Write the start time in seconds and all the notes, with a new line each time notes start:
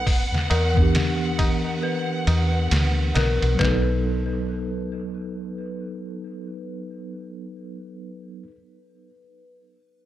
Already playing: B3 B4 F#5
0.06 kick, open hi-hat, tabla na
0.32 snare, tabla ge
0.50 E2 A#4, ride, tabla na
0.74 E3 B3, kick, tabla na, tabla ge
0.80 D4 G4
0.95 snare, ride, tabla na
1.39 kick, ride, tabla na
1.65 tabla na
1.82 B4, tabla na
2.27 E2, ride, tabla na
2.52 tabla na
2.71 D2, snare, ride, tabla na
3.15 B1 A#4, snare, ride, tabla na
3.42 B1, ride, tabla na
3.55 F#3
3.59 B1 B3 D#4 B4, kick, snare, clap
3.67 A4